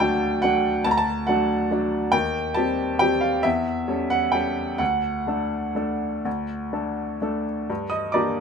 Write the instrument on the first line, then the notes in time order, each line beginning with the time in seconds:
grand piano
Already playing: D2 A5
0.00 F#3 A3 D4 G5
0.42 F#3 A3 D4 F#5
0.84 D2 A5
0.91 A#5
0.97 A5
1.27 F#3 A3 D4 F#5
1.71 F#3 A3 D4
2.12 D#2 G5
2.54 G3 C4 G4 A5
2.99 G3 C4 G4 G5
3.21 F5
3.43 E2 E5
3.88 G3 C#4 A4
4.10 F#5
4.32 G3 C#4 A4 G5
4.78 D2 F#5
5.27 A3 D4 A4
5.75 A3 D4 A4
6.25 D2
6.73 A3 D4 A4
7.22 A3 D4 A4
7.70 G2
7.90 D#5 D#6
8.12 A#3 D4 G4 D5 A#5 D6